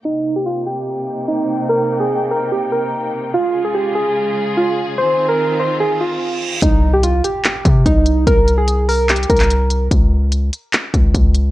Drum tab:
HH |------------------------------------------------|------------------------------------------------|------------------------------------------------|------------------------------------------------|
CP |------------------------------------------------|------------------------------------------------|------------------------------------------------|------------------------------------------------|
BD |------------------------------------------------|------------------------------------------------|------------------------------------------------|------------------------------------------------|

HH |x-----------x-----x-----x-----x-----x-----x-----|x-----x-----x-----o-----x-x-x-x-xxx-x-----x-----|x-----------x-----x-----x-----x-----x-----x-----|
CP |------------------------x-----------------------|------------------------x--------x--------------|------------------------x-----------------------|
BD |o-----------------------------o-----o-----------|o-----------------------------o-----------------|o-----------------------------o-----o-----------|